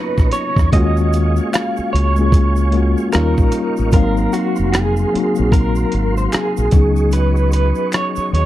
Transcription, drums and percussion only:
0.18 kick, cross-stick, shaker
0.31 cross-stick, closed hi-hat, shaker
0.56 kick, cross-stick, shaker
0.73 kick, closed hi-hat, shaker
0.97 shaker
1.13 closed hi-hat, shaker
1.36 shaker
1.53 finger snap, cross-stick, closed hi-hat, shaker
1.77 shaker
1.95 closed hi-hat
2.16 shaker
2.32 kick, closed hi-hat, shaker
2.56 shaker
2.72 closed hi-hat
2.97 shaker
3.12 finger snap, cross-stick, closed hi-hat, shaker
3.37 kick, shaker
3.52 closed hi-hat, shaker
3.77 shaker
3.92 kick, closed hi-hat, shaker
4.17 shaker
4.33 closed hi-hat, shaker
4.56 shaker
4.74 finger snap, cross-stick, closed hi-hat, shaker
4.96 shaker
5.15 closed hi-hat
5.35 shaker
5.52 kick, closed hi-hat, shaker
5.75 shaker
5.92 closed hi-hat
6.17 shaker
6.32 finger snap, cross-stick, closed hi-hat, shaker
6.57 shaker
6.71 kick, closed hi-hat, shaker
6.96 shaker
7.12 closed hi-hat, shaker
7.36 shaker
7.52 closed hi-hat, shaker
7.75 shaker
7.92 finger snap, cross-stick, closed hi-hat, shaker
8.16 shaker
8.35 closed hi-hat

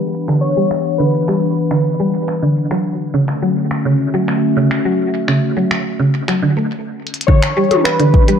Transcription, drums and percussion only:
0.28 finger snap
0.71 finger snap
1.28 finger snap
1.71 finger snap
2.28 finger snap
2.71 finger snap
3.28 finger snap
3.71 finger snap
4.28 finger snap
4.71 finger snap
5.28 finger snap
5.71 finger snap
6.28 finger snap
7.07 closed hi-hat
7.14 closed hi-hat
7.21 closed hi-hat
7.28 kick
7.42 finger snap
7.71 closed hi-hat, high tom
7.85 finger snap
8.00 closed hi-hat
8.14 kick
8.28 closed hi-hat

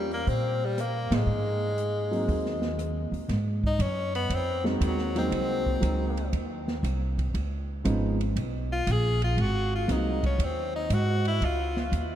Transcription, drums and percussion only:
0.11 open hi-hat
0.27 kick, open hi-hat
0.78 cross-stick, closed hi-hat
1.12 snare, ride
1.78 closed hi-hat
2.13 open hi-hat
2.28 kick, open hi-hat
2.46 snare
2.62 snare
2.79 cross-stick, closed hi-hat
3.14 open hi-hat
3.29 kick, snare, ride
3.64 kick
3.80 kick, hi-hat pedal, ride
4.15 ride
4.30 kick, ride
4.65 snare
4.81 kick, hi-hat pedal, ride
4.98 snare
5.15 snare, ride
5.32 kick, ride
5.66 kick
5.82 kick, hi-hat pedal, ride
6.17 ride
6.33 kick, ride
6.68 snare
6.84 kick, hi-hat pedal, ride
7.19 kick, ride
7.34 kick, ride
7.85 kick, hi-hat pedal, ride
8.21 ride
8.36 kick, ride
8.87 kick, hi-hat pedal, ride
9.22 ride
9.38 kick, ride
9.88 kick, snare, hi-hat pedal, ride
10.23 kick, ride
10.39 kick, ride
10.90 kick, hi-hat pedal, ride
11.25 ride
11.41 kick, ride
11.77 snare
11.92 kick, hi-hat pedal, ride

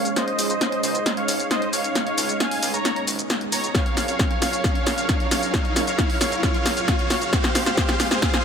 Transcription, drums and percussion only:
0.05 closed hi-hat, shaker
0.16 snare, closed hi-hat, shaker
0.28 closed hi-hat
0.39 open hi-hat, shaker
0.50 closed hi-hat, shaker
0.61 snare, closed hi-hat, shaker
0.72 closed hi-hat
0.84 open hi-hat, shaker
0.95 closed hi-hat, shaker
1.06 snare, closed hi-hat, shaker
1.17 closed hi-hat
1.28 open hi-hat, shaker
1.40 closed hi-hat, shaker
1.51 snare, closed hi-hat, shaker
1.62 closed hi-hat
1.73 open hi-hat, shaker
1.84 closed hi-hat, shaker
1.95 snare, closed hi-hat, shaker
2.07 closed hi-hat
2.18 open hi-hat, shaker
2.29 closed hi-hat, shaker
2.40 snare, closed hi-hat, shaker
2.51 open hi-hat
2.63 open hi-hat, shaker
2.74 closed hi-hat, shaker
2.85 snare, closed hi-hat, shaker
2.96 closed hi-hat
3.07 open hi-hat, shaker
3.19 closed hi-hat, shaker
3.30 snare, closed hi-hat, shaker
3.41 closed hi-hat
3.52 open hi-hat, shaker
3.64 closed hi-hat, shaker
3.75 kick, snare, closed hi-hat, shaker
3.86 closed hi-hat
3.97 snare, open hi-hat, shaker
4.08 closed hi-hat, shaker
4.19 kick, snare, closed hi-hat, shaker
4.31 closed hi-hat
4.42 snare, open hi-hat, shaker
4.53 closed hi-hat, shaker
4.64 kick, snare, closed hi-hat, shaker
4.75 closed hi-hat
4.87 snare, open hi-hat, shaker
4.98 closed hi-hat, shaker
5.09 kick, snare, closed hi-hat, shaker
5.20 closed hi-hat
5.31 snare, open hi-hat, shaker
5.43 closed hi-hat, shaker
5.54 kick, snare, closed hi-hat, shaker
5.65 closed hi-hat
5.76 snare, open hi-hat, shaker
5.87 closed hi-hat, shaker
5.98 kick, snare, closed hi-hat, shaker
6.10 open hi-hat
6.21 snare, open hi-hat, shaker
6.32 closed hi-hat, shaker
6.43 kick, snare, closed hi-hat, shaker
6.54 closed hi-hat
6.66 snare, open hi-hat, shaker
6.77 closed hi-hat, shaker
6.88 kick, snare, closed hi-hat, shaker
6.99 closed hi-hat
7.10 snare, open hi-hat, shaker
7.22 closed hi-hat, shaker
7.33 kick, snare, closed hi-hat, shaker
7.44 snare, closed hi-hat
7.55 snare, open hi-hat, shaker
7.66 snare, closed hi-hat, shaker
7.77 kick, snare, closed hi-hat, shaker
7.89 snare, closed hi-hat
8.00 snare, open hi-hat, shaker
8.11 snare, closed hi-hat, shaker
8.22 kick, snare, closed hi-hat, shaker
8.34 snare, closed hi-hat

